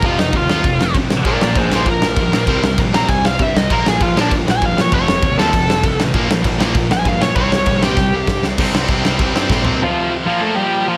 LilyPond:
<<
  \new Staff \with { instrumentName = "Lead electric guitar" } { \time 4/4 \key c \dorian \tempo 4 = 196 f'8 ees'8 f'2 r4 | <bes' d''>8 <bes' d''>8 <aes' c''>8 <aes' c''>8 bes'2~ | bes'4 r8 bes''8 aes''8 f''8 e''8 ees''8 | bes'8 aes'8 f'8 d'8 r8 aes''8 f''8 des''8 |
des''4. a'2 r8 | r2 r8 aes''8 f''8 des''8 | des''4. g'2 r8 | r1 |
<f f'>4 r8 <f f'>8 <a a'>8 <g g'>4 <f f'>8 | }
  \new Staff \with { instrumentName = "Distorted electric guitar" } { \clef bass \time 4/4 \key c \dorian <f, c f>8 <f, c f>8 <f, c f>8 <f, c f>8 <f, c f>8 <f, c f>8 <f, c f>8 <f, c f>8 | <bes, f bes>8 <bes, f bes>8 <bes, f bes>8 <bes, f bes>8 <bes, f bes>8 <bes, f bes>8 <bes, f bes>8 <bes, f bes>8 | <c g c'>8 <c g c'>8 <c g c'>8 <c g c'>8 <c g c'>8 <c g c'>8 <c g c'>8 <c g c'>8 | <bes, f bes>8 <bes, f bes>8 <bes, f bes>8 <bes, f bes>8 <bes, f bes>8 <bes, f bes>8 <bes, f bes>8 <bes, f bes>8 |
<f, c f>8 <f, c f>8 <f, c f>8 <f, c f>8 <f, c f>8 <f, c f>8 <f, c f>8 <f, c f>8 | <bes, f bes>8 <bes, f bes>8 <bes, f bes>8 <bes, f bes>8 <bes, f bes>8 <bes, f bes>8 <bes, f bes>8 <bes, f bes>8 | <c g c'>8 <c g c'>8 <c g c'>8 <c g c'>8 <c g c'>8 <c g c'>8 <c g c'>8 <c g c'>8 | <c g c'>4. <c g c'>4. <c g c'>4 |
r1 | }
  \new Staff \with { instrumentName = "Distorted electric guitar" } { \clef bass \time 4/4 \key c \dorian <f, c f>8 <f, c>8 <f, c>8 <f, c f>8 <f, c>8 <f, c>8 <f, c>8 <f, c>8 | <bes, f bes>8 <bes, f>8 <bes, f>8 <bes, f bes>8 <bes, f>8 <bes, f>8 <bes, f>8 <bes, f>8 | <c g c'>8 <c g>8 <c g>8 <c g c'>8 <c g>8 <c g>8 <c g>8 <c g>8 | <bes, f bes>8 <bes, f>8 <bes, f>8 <bes, f bes>8 <bes, f>8 <bes, f>8 <bes, f>8 <bes, f>8 |
<f, c f>8 <f, c>8 <f, c>8 <f, c f>8 <f, c>8 <f, c>8 <f, c>8 <f, c>8 | <bes, f bes>8 <bes, f>8 <bes, f>8 <bes, f bes>8 <bes, f>8 <bes, f>8 <bes, f>8 <bes, f>8 | <c g c'>8 <c g>8 <c g>8 <c g c'>8 <c g>8 <c g>8 <c g>8 <c g>8 | <c g c'>8 <c g c'>8 <c g c'>8 <c g c'>8 <c g c'>8 <c g c'>8 <c g c'>8 <c g c'>8 |
<f, c f>4. <bes, f bes>2~ <bes, f bes>8 | }
  \new Staff \with { instrumentName = "Distorted electric guitar" } { \clef bass \time 4/4 \key c \dorian <f, c f>8 <f, c>8 <f, c>8 <f, c f>8 <f, c>8 <f, c>8 <f, c>8 <f, c>8 | <bes, f bes>8 <bes, f>8 <bes, f>8 <bes, f bes>8 <bes, f>8 <bes, f>8 <bes, f>8 <bes, f>8 | <c g c'>8 <c g>8 <c g>8 <c g c'>8 <c g>8 <c g>8 <c g>8 <c g>8 | <bes, f bes>8 <bes, f>8 <bes, f>8 <bes, f bes>8 <bes, f>8 <bes, f>8 <bes, f>8 <bes, f>8 |
<f, c f>8 <f, c>8 <f, c>8 <f, c f>8 <f, c>8 <f, c>8 <f, c>8 <f, c>8 | <bes, f bes>8 <bes, f>8 <bes, f>8 <bes, f bes>8 <bes, f>8 <bes, f>8 <bes, f>8 <bes, f>8 | <c g c'>8 <c g>8 <c g>8 <c g c'>8 <c g>8 <c g>8 <c g>8 <c g>8 | <c g c'>8 <c g c'>8 <c g c'>8 <c g c'>8 <c g c'>8 <c g c'>8 <c g c'>8 <c g c'>8 |
r1 | }
  \new Staff \with { instrumentName = "Picked electric bass" } { \clef bass \time 4/4 \key c \dorian f,,8 f,,8 ees,4 f,,4 c,8 a,,8 | bes,,8 bes,,8 bes,,8 bes,,8 bes,8 bes,,8 g,8 bes,8 | c,8 c,8 bes,,4 c,4 g,8 c,8 | bes,,8 bes,,8 bes,,8 bes,,8 bes,8 bes,,8 g,8 bes,8 |
f,,8 f,,8 ees,4 f,,4 c,8 a,,8 | bes,,8 bes,,8 bes,,8 bes,,8 bes,8 bes,,8 g,8 bes,8 | c,8 c,8 bes,,4 c,4 g,8 c,8 | c,8 c,8 c,8 c,8 c,8 g,8 bes,,4 |
r1 | }
  \new DrumStaff \with { instrumentName = "Drums" } \drummode { \time 4/4 <cymc bd>8 sn8 <cymc bd>8 sn8 <cymc bd>8 sn8 <cymc bd>8 sn8 | <cymc bd>8 sn8 <cymc bd>8 sn8 <cymc bd>8 sn8 <cymc bd>8 sn8 | <cymc bd>8 sn8 <cymc bd>8 sn8 <cymc bd>8 sn8 <cymc bd>8 sn8 | <cymc bd>8 sn8 <cymc bd>8 sn8 <cymc bd>8 sn8 <cymc bd>8 sn8 |
<cymc bd>8 sn8 <cymc bd>8 sn8 <cymc bd>8 sn8 <cymc bd>8 sn8 | <cymc bd>8 sn8 <cymc bd>8 sn8 <cymc bd>8 sn8 <cymc bd>8 sn8 | <cymc bd>8 sn8 <cymc bd>8 sn8 <bd sn>4 <bd sn>8 sn8 | <cymc bd>8 sn8 <cymc bd>8 sn8 <cymc bd>8 sn8 <bd sn>8 tomfh8 |
r4 r4 r4 r4 | }
>>